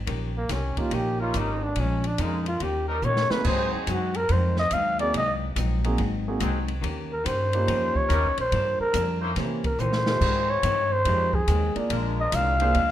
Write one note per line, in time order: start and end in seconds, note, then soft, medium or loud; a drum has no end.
0.07 0.49 A#1 medium
0.07 0.36 D#3 medium
0.07 0.37 A#3 medium
0.07 0.37 C#4 medium
0.07 0.38 G4 medium
0.07 kick soft
0.07 ride medium
0.37 0.54 A#3 medium
0.49 0.75 C2 loud
0.49 0.79 D#3 medium
0.49 0.79 A#3 medium
0.49 0.80 C#4 medium
0.49 0.79 C#4 medium
0.49 0.80 G4 medium
0.49 kick soft
0.49 snare soft
0.49 hi-hat pedal medium
0.49 ride medium
0.77 1.31 A#3 medium
0.77 1.32 C#4 medium
0.77 1.32 D#4 medium
0.77 1.31 F4 medium
0.77 0.96 F4 medium
0.77 1.32 G4 medium
0.77 muted upright bass stroke soft
0.77 kick medium
0.77 ride soft
0.91 1.33 A#1 medium
0.91 1.21 D#3 soft
0.91 1.21 A#3 medium
0.91 1.22 C#4 medium
0.91 1.21 G4 medium
0.91 1.22 G4 medium
0.91 ride medium
1.19 1.73 G3 medium
1.19 1.73 C#4 medium
1.19 1.73 D#4 medium
1.19 1.39 F4 medium
1.19 1.74 A#4 medium
1.34 1.75 G#1 medium
1.34 1.63 D#3 medium
1.34 1.64 A#3 medium
1.34 1.64 C#4 medium
1.34 1.65 D#4 medium
1.34 1.65 G4 medium
1.34 kick soft
1.34 hi-hat pedal medium
1.34 ride medium
1.64 1.82 D4 medium
1.76 2.17 A#1 medium
1.76 2.06 A#2 soft
1.76 2.06 F3 medium
1.76 2.07 G#3 medium
1.76 kick soft
1.76 ride medium
1.80 2.07 C#4 medium
1.80 2.08 C#4 medium
2.04 2.23 D4 medium
2.04 ride medium
2.18 2.59 F2 medium
2.18 2.48 A#2 medium
2.18 2.48 F3 medium
2.18 2.61 G#3 medium
2.18 2.49 G#3 medium
2.18 2.61 C#4 medium
2.18 2.49 C#4 medium
2.18 2.47 D#4 medium
2.18 2.61 F4 medium
2.18 2.61 A#4 medium
2.18 kick soft
2.18 hi-hat pedal medium
2.18 ride medium
2.46 2.65 F4 medium
2.46 ride soft
2.60 3.02 D#2 medium
2.60 2.90 D#3 medium
2.60 2.91 A#3 soft
2.60 2.91 C#4 medium
2.60 2.89 G4 medium
2.60 2.91 G4 medium
2.60 kick soft
2.60 ride medium
2.87 2.98 G3 medium
2.87 2.98 C#4 medium
2.87 2.98 D#4 medium
2.87 2.98 A#4 loud
2.87 3.06 A#4 medium
3.02 3.28 A#2 medium
3.02 3.33 D#3 medium
3.02 3.33 A#3 medium
3.02 3.33 C#4 medium
3.02 3.33 C#5 loud
3.02 hi-hat pedal soft
3.06 3.34 G4 medium
3.17 snare medium
3.30 3.44 A#3 medium
3.30 3.44 C4 soft
3.30 3.44 D#4 medium
3.30 3.44 F#4 medium
3.30 3.44 G#4 medium
3.30 3.49 B4 medium
3.30 muted upright bass stroke soft
3.30 snare medium
3.45 3.71 G#2 medium
3.45 3.74 G#2 medium
3.45 4.10 F#3 loud
3.45 3.75 F#3 medium
3.45 4.10 C4 medium
3.45 3.75 C4 medium
3.45 4.10 D#4 loud
3.45 3.76 D#4 medium
3.45 4.10 G#4 loud
3.45 3.74 C5 medium
3.45 kick medium
3.45 crash medium
3.73 3.90 D#4 soft
3.73 muted upright bass stroke soft
3.87 4.28 F#2 medium
3.87 4.17 G#2 medium
3.87 4.18 F#3 medium
3.87 4.18 C4 medium
3.87 4.18 D#4 medium
3.87 4.18 F#4 medium
3.87 kick soft
3.87 hi-hat pedal medium
3.87 ride medium
4.14 4.34 A#4 medium
4.14 ride soft
4.29 4.70 F2 medium
4.29 4.59 G#2 soft
4.29 4.60 F#3 medium
4.29 4.60 C4 medium
4.29 4.59 C5 medium
4.29 kick soft
4.29 ride medium
4.33 4.61 D#4 medium
4.56 4.75 D#5 loud
4.56 snare soft
4.71 5.13 D#2 medium
4.71 5.01 G#2 medium
4.71 5.02 F#3 medium
4.71 5.02 C4 medium
4.71 5.00 F5 loud
4.71 kick soft
4.71 hi-hat pedal medium
4.71 ride medium
4.75 5.03 D#4 medium
4.99 5.13 A#3 medium
4.99 5.13 C4 medium
4.99 5.13 D#4 medium
4.99 5.13 F#4 medium
4.99 5.13 G#4 medium
4.99 5.14 D5 loud
4.99 ride soft
5.14 5.55 C2 medium
5.14 5.44 G#2 medium
5.14 5.44 F#3 medium
5.14 5.45 C4 medium
5.14 5.45 D#4 medium
5.14 5.33 D#5 medium
5.14 kick soft
5.14 ride medium
5.56 5.97 A#1 medium
5.56 5.85 G#2 medium
5.56 5.86 F#3 medium
5.56 5.86 C4 medium
5.56 5.87 D#4 medium
5.56 kick soft
5.56 hi-hat pedal medium
5.56 ride medium
5.84 5.98 A#3 medium
5.84 5.98 C4 medium
5.84 5.98 D#4 medium
5.84 5.97 F#4 medium
5.84 5.98 G#4 medium
5.84 ride soft
5.98 6.39 G#1 medium
5.98 6.27 G#2 soft
5.98 6.28 F#3 medium
5.98 6.28 C4 medium
5.98 6.29 D#4 medium
5.98 kick soft
5.98 ride medium
6.28 6.40 A#3 medium
6.28 6.40 C4 medium
6.28 6.40 D#4 medium
6.28 6.40 F#4 medium
6.28 6.40 G#4 medium
6.40 6.82 C2 medium
6.40 6.70 G#2 medium
6.40 6.59 F#3 medium
6.40 6.70 F#3 medium
6.40 6.59 C4 medium
6.40 6.70 C4 medium
6.40 6.59 D#4 medium
6.40 6.70 D#4 medium
6.40 6.59 G#4 medium
6.40 kick soft
6.40 hi-hat pedal medium
6.40 ride medium
6.68 ride soft
6.81 7.24 D#2 medium
6.81 7.11 D#3 medium
6.81 7.12 A#3 medium
6.81 7.13 C#4 medium
6.81 7.13 G4 medium
6.81 kick soft
6.81 ride medium
7.13 7.28 A#4 medium
7.24 7.66 G2 medium
7.24 7.54 D#3 medium
7.24 7.54 A#3 medium
7.24 7.55 C#4 medium
7.24 7.55 G4 medium
7.24 7.98 C5 loud
7.24 kick soft
7.24 hi-hat pedal medium
7.24 ride medium
7.53 8.08 A#3 medium
7.53 8.08 C#4 medium
7.53 8.08 D#4 medium
7.53 8.08 F4 medium
7.53 8.08 G4 medium
7.53 ride medium
7.67 7.93 F2 medium
7.67 7.96 D#3 soft
7.67 7.97 A#3 soft
7.67 7.97 C#4 medium
7.67 7.98 G4 medium
7.67 kick soft
7.67 ride medium
7.95 8.38 C#5 medium
7.95 muted upright bass stroke soft
7.95 kick medium
8.08 8.26 D#2 medium
8.08 8.39 D#3 medium
8.08 8.28 G3 medium
8.08 8.39 A#3 medium
8.08 8.28 C#4 medium
8.08 8.40 C#4 medium
8.08 8.28 D#4 medium
8.08 8.40 G4 medium
8.08 8.28 A#4 loud
8.08 kick soft
8.08 hi-hat pedal medium
8.08 ride medium
8.24 8.37 C#2 medium
8.38 8.51 A#1 medium
8.38 8.78 C5 loud
8.38 ride soft
8.52 8.78 G2 medium
8.52 8.81 G2 medium
8.52 8.82 F3 medium
8.52 8.82 A#3 medium
8.52 8.83 D4 medium
8.52 kick soft
8.52 ride medium
8.80 9.20 A#4 medium
8.80 muted upright bass stroke soft
8.93 9.35 F2 medium
8.93 9.23 G2 medium
8.93 9.23 F3 medium
8.93 9.24 A#3 medium
8.93 9.24 D4 medium
8.93 kick soft
8.93 hi-hat pedal medium
8.93 ride medium
9.21 9.31 A#3 loud
9.21 9.31 C#4 medium
9.21 9.31 E4 medium
9.21 9.31 C5 loud
9.36 9.77 C3 medium
9.36 9.66 C3 medium
9.36 9.66 E3 medium
9.36 9.62 A#3 medium
9.36 9.67 A#3 medium
9.36 9.62 C#4 medium
9.36 9.67 C#4 medium
9.36 9.62 E4 medium
9.36 9.62 G4 medium
9.36 9.62 C5 medium
9.36 kick soft
9.36 snare soft
9.36 ride medium
9.64 9.81 A#4 medium
9.64 kick medium
9.64 ride soft
9.79 10.20 A#2 medium
9.79 10.09 C3 medium
9.79 10.09 E3 medium
9.79 10.09 A#3 medium
9.79 10.09 C#4 medium
9.79 10.51 C5 medium
9.79 hi-hat pedal medium
9.93 snare medium
10.06 10.20 G#3 medium
10.06 10.20 D#4 medium
10.06 10.20 F4 medium
10.06 10.20 G4 medium
10.06 10.20 A#4 medium
10.06 snare medium
10.20 10.50 F2 soft
10.20 10.62 G#2 medium
10.20 10.51 D#3 medium
10.20 10.85 G#3 medium
10.20 10.51 G#3 medium
10.20 10.52 C4 medium
10.20 10.86 D#4 medium
10.20 10.85 F4 medium
10.20 10.86 G#4 medium
10.20 kick medium
10.20 crash medium
10.50 10.94 C#5 loud
10.63 10.93 F2 medium
10.63 11.04 G2 loud
10.63 10.93 D#3 medium
10.63 10.94 G#3 medium
10.63 10.94 C4 medium
10.63 kick soft
10.63 hi-hat pedal medium
10.63 ride medium
10.92 11.36 C5 loud
11.05 11.47 F2 medium
11.05 11.35 F2 soft
11.05 11.36 D#3 soft
11.05 11.31 G#3 medium
11.05 11.36 G#3 soft
11.05 11.37 C4 medium
11.05 11.31 D#4 medium
11.05 11.31 F4 medium
11.05 11.31 G4 medium
11.05 11.31 C5 medium
11.05 kick soft
11.05 ride medium
11.33 11.76 G#4 medium
11.33 kick medium
11.47 11.74 D#2 medium
11.47 11.77 F2 medium
11.47 11.78 D#3 medium
11.47 11.78 G#3 medium
11.47 11.78 C4 medium
11.47 kick soft
11.47 hi-hat pedal medium
11.47 ride medium
11.76 11.89 A#3 medium
11.76 11.89 D4 medium
11.76 11.89 F4 medium
11.76 11.89 G#4 medium
11.76 11.89 D5 medium
11.76 muted upright bass stroke soft
11.76 ride soft
11.89 12.31 A#1 medium
11.89 12.20 A#2 medium
11.89 12.20 F3 medium
11.89 12.54 G#3 medium
11.89 12.21 G#3 medium
11.89 12.55 D4 medium
11.89 12.54 F4 medium
11.89 12.55 A#4 loud
11.89 kick soft
11.89 ride medium
11.93 12.21 D4 medium
12.20 12.36 D#5 medium
12.32 12.73 C2 loud
12.32 12.62 A#2 medium
12.32 12.62 F3 medium
12.32 12.63 G#3 medium
12.32 12.63 D4 medium
12.32 12.91 F5 loud
12.32 kick soft
12.32 hi-hat pedal medium
12.32 ride medium
12.60 12.74 A#3 medium
12.60 12.74 D4 medium
12.60 12.74 F4 medium
12.60 12.74 G#4 medium
12.60 12.74 C5 medium
12.60 ride medium
12.74 12.91 D2 medium
12.74 12.91 A#2 soft
12.74 12.91 F3 soft
12.74 12.91 G#3 medium
12.74 12.91 D4 medium
12.74 kick soft
12.74 ride medium